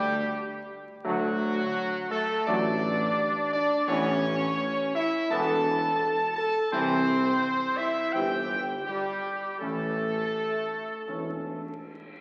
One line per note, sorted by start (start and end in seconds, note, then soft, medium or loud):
0.00 0.24 D2 loud
0.00 0.67 G3 loud
0.00 0.67 G4 loud
1.04 1.63 D2 loud
1.04 1.29 F#3 loud
1.04 2.07 F#3 loud
1.04 1.29 A3 loud
1.04 2.06 F#4 loud
2.10 2.44 A3 loud
2.10 2.45 A4 loud
2.47 3.06 A1 loud
2.47 2.72 F#3 loud
2.47 2.72 A3 loud
2.47 3.53 D4 loud
2.47 3.49 D5 loud
3.52 3.86 D4 loud
3.52 3.86 D5 loud
3.88 4.47 A1 loud
3.88 4.13 E3 loud
3.88 4.13 B3 loud
3.88 4.92 C#4 loud
3.88 4.91 C#5 loud
4.95 5.29 E4 loud
4.95 5.29 E5 loud
5.30 5.90 E1 loud
5.30 5.56 E3 loud
5.30 5.56 B3 loud
5.30 6.33 A4 loud
5.30 6.33 A5 loud
6.36 6.70 A4 loud
6.36 6.70 A5 loud
6.72 7.32 C2 loud
6.72 6.98 E3 loud
6.72 7.75 C4 loud
6.72 6.98 C4 loud
6.72 7.75 C5 loud
7.77 8.12 E4 loud
7.77 8.14 E5 loud
8.13 8.75 G1 loud
8.13 8.40 E3 medium
8.13 8.40 C4 loud
8.13 8.87 G4 loud
8.13 8.69 G5 loud
8.86 9.57 G3 loud
8.86 9.56 G4 loud
9.60 10.23 A1 loud
9.60 9.87 E3 medium
9.60 11.82 A3 loud
9.60 9.87 C#4 medium
9.60 11.81 A4 loud
11.07 11.69 E1 medium
11.07 11.34 E3 medium
11.07 11.34 C#4 medium